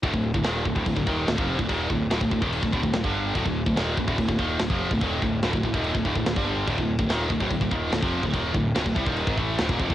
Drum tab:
CC |x---x---x---x---|x---x---x---x---|x---x---x---x---|x---x---x---x---|
SD |----o-------o---|----o-------o---|----o-------o---|----o-------o---|
BD |oo-o--ooooo--o-o|o-o--ooo-ooo-o--|oo-o--ooooo--o-o|o-o--ooo-ooo-o--|

CC |x---x---x---x---|x---x---x---x---|
SD |----o-------o---|----o-------o---|
BD |oo-o--ooooo--o-o|o-o--ooo-oo--ooo|